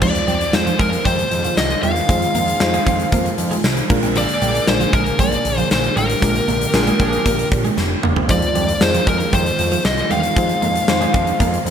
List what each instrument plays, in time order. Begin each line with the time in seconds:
0.01 analog synth bass F2, analog synth pad D#3 G#3 F4, clean electric guitar F3, fm electric piano G#3 D#4 F4 C5, lead electric guitar D5, kick, crash
0.15 closed hi-hat
0.27 analog synth bass F2, clean electric guitar G3, closed hi-hat
0.41 muted clean electric guitar stroke, closed hi-hat
0.53 analog synth bass F2, fm electric piano G#3 D#4 F4 C5, lead electric guitar C5, muted clean electric guitar stroke, snare, tambourine
0.66 clean electric guitar F3, closed hi-hat
0.79 analog synth bass F2, clean electric guitar G#3, lead electric guitar A#4, kick, closed hi-hat
0.93 closed hi-hat
1.05 analog synth bass F2, clean electric guitar G3, lead electric guitar C5, kick, closed hi-hat
1.18 muted clean electric guitar stroke, closed hi-hat
1.31 analog synth bass F2, closed hi-hat
1.44 clean electric guitar F3, closed hi-hat
1.57 analog synth bass C2, lead electric guitar D#5, snare, tambourine
1.70 closed hi-hat
1.83 analog synth bass E2, clean electric guitar G3, lead electric guitar F5, closed hi-hat
1.96 closed hi-hat
2.09 analog synth bass F2, fm electric piano G#3 D#4 F4 C5, clean electric guitar G#3, kick, closed hi-hat
2.22 closed hi-hat
2.35 analog synth bass F2, clean electric guitar A#3, closed hi-hat
2.48 muted clean electric guitar stroke, closed hi-hat
2.60 analog synth bass F2, fm electric piano G#3 D#4 F4 C5, muted clean electric guitar stroke, snare, tambourine
2.74 clean electric guitar G#3, closed hi-hat
2.86 analog synth bass F2, clean electric guitar C4, kick, closed hi-hat
2.99 closed hi-hat
3.12 analog synth bass F2, clean electric guitar A#3, kick, closed hi-hat
3.26 muted clean electric guitar stroke, closed hi-hat
3.38 analog synth bass F2, closed hi-hat
3.51 clean electric guitar G#3, closed hi-hat
3.64 analog synth bass C2, muted clean electric guitar stroke, snare, tambourine
3.77 closed hi-hat
3.89 analog synth bass A#1, analog synth pad D3 A#3 G#4, fm electric piano G#3 D4 F4 A#4, clean electric guitar A#3, kick, crash
4.03 clean electric guitar C4, closed hi-hat
4.16 clean electric guitar F3, lead electric guitar D5, closed hi-hat
4.29 closed hi-hat
4.42 analog synth bass A#1, clean electric guitar G3, closed hi-hat
4.55 muted clean electric guitar stroke, closed hi-hat
4.67 analog synth bass A#1, fm electric piano G#3 D4 F4 A#4, lead electric guitar C5, muted clean electric guitar stroke, snare, tambourine
4.80 clean electric guitar F3, closed hi-hat
4.93 analog synth bass A#1, clean electric guitar G#3, lead electric guitar A#4, kick, closed hi-hat
5.06 closed hi-hat
5.19 analog synth bass A#1, clean electric guitar G3, lead electric guitar D5, kick, closed hi-hat
5.32 muted clean electric guitar stroke, closed hi-hat
5.45 analog synth bass A#1, closed hi-hat
5.57 clean electric guitar F3, closed hi-hat
5.71 analog synth bass A#1, lead electric guitar C5, snare, tambourine
5.84 closed hi-hat
5.96 analog synth bass A1, clean electric guitar G3, analog synth pad G4, lead electric guitar A#4, closed hi-hat
6.10 closed hi-hat
6.22 analog synth bass A#1, fm electric piano G#3 D4 F4 A#4, clean electric guitar G#3, kick, closed hi-hat
6.35 closed hi-hat
6.48 analog synth bass A#1, clean electric guitar A#3, closed hi-hat
6.61 muted clean electric guitar stroke, closed hi-hat
6.74 analog synth bass A#1, analog polysynth F3 D4 G#4, fm electric piano G#3 D4 F4 A#4, muted clean electric guitar stroke, snare, tambourine
6.87 clean electric guitar G#3, closed hi-hat
6.99 analog synth bass A#1, analog polysynth F3 D4 G#4, clean electric guitar C4, kick, closed hi-hat
7.13 closed hi-hat
7.26 analog synth bass A#1, clean electric guitar A#3, kick, closed hi-hat
7.39 muted clean electric guitar stroke, closed hi-hat
7.52 analog synth bass A#1, kick, closed hi-hat
7.64 clean electric guitar G#3, closed hi-hat
7.77 analog synth bass F1, muted clean electric guitar stroke, snare, tambourine
8.03 analog synth bass E1, clean electric guitar A#3, mid tom
8.16 clean electric guitar C4, floor tom
8.29 analog synth bass F2, analog synth pad D#3 G#3 F4, clean electric guitar F3, fm electric piano G#3 D#4 F4 C5, lead electric guitar D5, kick, closed hi-hat
8.42 closed hi-hat
8.55 analog synth bass F2, clean electric guitar G3, closed hi-hat
8.69 muted clean electric guitar stroke, closed hi-hat
8.81 analog synth bass F2, fm electric piano G#3 D#4 F4 G#4, lead electric guitar C5, muted clean electric guitar stroke, snare, tambourine
8.94 clean electric guitar F3, closed hi-hat
9.07 analog synth bass F2, clean electric guitar G#3, lead electric guitar A#4, kick, closed hi-hat
9.20 closed hi-hat
9.33 analog synth bass F2, clean electric guitar G3, lead electric guitar C5, kick, closed hi-hat
9.46 muted clean electric guitar stroke, closed hi-hat
9.59 analog synth bass F2, closed hi-hat
9.72 clean electric guitar F3, closed hi-hat
9.84 analog synth bass C2, lead electric guitar D#5, snare, tambourine
9.98 closed hi-hat
10.11 analog synth bass E2, clean electric guitar G3, lead electric guitar F5, closed hi-hat
10.23 closed hi-hat
10.36 analog synth bass F2, clean electric guitar G#3, fm electric piano G#3 D#4 F4 C5, kick, closed hi-hat
10.49 closed hi-hat
10.62 analog synth bass F2, clean electric guitar A#3, closed hi-hat
10.75 muted clean electric guitar stroke, closed hi-hat
10.88 analog synth bass F2, fm electric piano G#3 D#4 F4 C5, muted clean electric guitar stroke, snare, tambourine
11.01 clean electric guitar G#3, closed hi-hat
11.14 analog synth bass F2, clean electric guitar C4, kick, closed hi-hat
11.27 closed hi-hat
11.40 analog synth bass F2, clean electric guitar A#3, kick, closed hi-hat
11.53 muted clean electric guitar stroke, closed hi-hat
11.66 analog synth bass F2, closed hi-hat